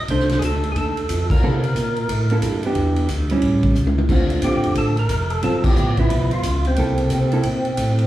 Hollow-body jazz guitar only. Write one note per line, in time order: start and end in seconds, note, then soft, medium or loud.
0.11 1.03 A3 medium
0.11 1.03 D4 medium
1.43 1.62 A#3 medium
1.43 1.62 E4 medium
1.43 1.62 A4 medium
2.31 2.62 A#3 medium
2.31 2.62 E4 medium
2.31 2.63 A4 medium
2.65 3.07 E3 medium
2.65 3.08 B3 medium
2.65 3.08 D4 medium
2.65 3.08 G4 medium
3.31 3.74 G3 medium
3.31 3.74 C#4 medium
3.31 3.74 E4 medium
4.10 4.42 D3 medium
4.10 4.42 A3 medium
4.10 4.43 C4 medium
4.10 4.42 F4 medium
4.44 4.94 D3 medium
4.44 4.94 A3 medium
4.44 4.94 C4 medium
4.44 4.94 F4 medium
5.43 5.62 F#3 medium
5.43 5.62 C4 medium
5.43 5.62 F4 medium
5.65 5.94 F3 medium
5.65 5.94 B3 medium
5.65 5.94 E4 medium
5.99 6.42 F3 medium
5.99 6.42 B3 medium
5.99 6.42 E4 medium
6.78 7.28 A#3 medium
6.78 7.28 E4 medium
6.78 7.29 A4 medium
7.33 7.43 A#3 medium
7.33 7.43 E4 medium
7.33 7.44 A4 medium